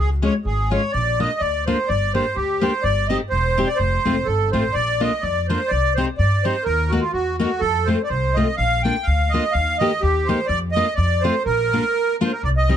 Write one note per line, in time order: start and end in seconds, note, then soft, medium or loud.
0.00 0.27 C#2 medium
0.22 0.32 G#3 medium
0.22 0.32 C#4 soft
0.22 0.32 F4 medium
0.22 0.34 C#5 medium
0.45 0.76 G#1 medium
0.45 0.72 G#4 medium
0.71 0.81 G#3 soft
0.71 0.81 C#4 soft
0.71 0.81 F4 medium
0.71 0.92 C#5 medium
0.92 1.25 A#1 medium
0.92 1.19 D5 medium
1.20 1.29 A#3 soft
1.20 1.29 D4 soft
1.20 1.29 F4 medium
1.20 1.42 D#5 medium
1.40 1.72 D2 medium
1.40 1.64 D5 medium
1.66 1.77 A#3 medium
1.66 1.77 D4 medium
1.66 1.77 F4 medium
1.66 1.89 C5 medium
1.88 2.20 G1 medium
1.88 2.12 D5 medium
2.14 2.24 A#3 medium
2.14 2.24 D4 soft
2.14 2.24 G4 medium
2.14 2.36 C5 medium
2.36 2.67 D2 medium
2.36 2.62 G4 medium
2.61 2.71 A#3 medium
2.61 2.71 D4 medium
2.61 2.71 G4 medium
2.61 2.84 C5 medium
2.83 3.15 G1 medium
2.83 3.07 D5 medium
3.08 3.19 C4 medium
3.08 3.19 D#4 soft
3.08 3.19 G4 medium
3.08 3.18 D#5 medium
3.30 3.62 E1 medium
3.30 3.68 C5 medium
3.58 3.67 C4 medium
3.58 3.67 D#4 medium
3.58 3.67 G4 medium
3.67 3.78 D5 medium
3.76 3.96 F1 medium
3.76 4.27 C5 medium
4.05 4.25 F1 medium
4.05 4.15 A3 medium
4.05 4.15 C4 medium
4.05 4.15 F4 medium
4.25 4.50 G1 medium
4.25 4.50 A4 medium
4.52 4.73 A1 medium
4.52 4.63 A3 medium
4.52 4.63 C4 soft
4.52 4.63 F4 medium
4.52 4.75 C5 medium
4.73 5.06 A#1 medium
4.73 5.01 D5 medium
5.00 5.11 A#3 medium
5.00 5.11 D4 medium
5.00 5.11 F4 medium
5.00 5.24 D#5 medium
5.21 5.54 F2 medium
5.21 5.46 D5 medium
5.48 5.59 A#3 medium
5.48 5.59 D4 medium
5.48 5.59 F4 medium
5.48 5.71 C5 medium
5.68 6.02 C2 medium
5.68 5.93 D5 medium
5.95 6.07 C4 medium
5.95 6.07 D#4 medium
5.95 6.07 G4 medium
5.95 6.05 C5 medium
6.18 6.50 G2 medium
6.18 6.45 D5 medium
6.43 6.54 C4 medium
6.43 6.54 D#4 medium
6.43 6.55 G4 medium
6.43 6.64 C5 medium
6.64 6.97 D#2 medium
6.64 6.92 A#4 medium
6.89 7.02 A#3 medium
6.89 7.02 D#4 soft
6.89 7.00 F#4 medium
6.89 7.02 F#4 medium
7.01 7.11 F4 medium
7.13 7.45 E2 medium
7.13 7.36 F#4 medium
7.38 7.49 A#3 medium
7.38 7.49 D#4 medium
7.38 7.61 F#4 medium
7.38 7.49 F#4 medium
7.60 7.93 F2 medium
7.60 7.88 A4 loud
7.85 7.97 A3 medium
7.85 7.98 C4 medium
7.85 7.98 F4 medium
7.85 8.02 C5 medium
8.03 8.09 D5 medium
8.08 8.42 C2 medium
8.08 8.36 C5 medium
8.34 8.46 A3 medium
8.34 8.46 C4 soft
8.34 8.46 F4 medium
8.34 8.55 D#5 medium
8.57 8.90 A#1 medium
8.57 8.82 F5 loud
8.83 8.95 A#3 medium
8.83 8.95 D4 medium
8.83 8.95 F4 medium
8.83 9.06 G5 medium
9.03 9.32 F5 medium
9.07 9.38 D2 medium
9.29 9.53 D#5 medium
9.34 9.43 A#3 medium
9.34 9.43 D4 medium
9.34 9.43 F4 medium
9.52 9.86 D#2 medium
9.52 9.77 F5 loud
9.78 9.90 A#3 medium
9.78 9.90 D#4 medium
9.78 9.91 G4 medium
9.78 10.02 D#5 loud
10.01 10.34 D#2 medium
10.01 10.28 G4 medium
10.25 10.38 A#3 medium
10.25 10.38 D#4 medium
10.25 10.38 G4 medium
10.25 10.47 C5 medium
10.47 10.81 F2 medium
10.47 10.59 D5 loud
10.72 10.94 D#5 loud
10.76 10.86 A#3 medium
10.76 10.86 D4 soft
10.76 10.86 F4 medium
10.95 11.29 F2 medium
10.95 11.23 D5 medium
11.21 11.34 A3 medium
11.21 11.34 C4 medium
11.21 11.34 F4 medium
11.21 11.43 C5 medium
11.45 11.77 A#1 medium
11.45 12.16 A#4 loud
11.73 11.83 A#3 medium
11.73 11.83 D4 soft
11.73 11.83 F4 medium
12.21 12.31 A#3 medium
12.21 12.31 D4 medium
12.21 12.31 F4 medium
12.21 12.32 C5 medium
12.32 12.42 A#4 medium
12.43 12.75 C2 medium
12.43 12.49 D5 medium
12.57 12.77 D#5 medium
12.69 12.77 G3 medium
12.69 12.77 C4 medium
12.69 12.77 D#4 medium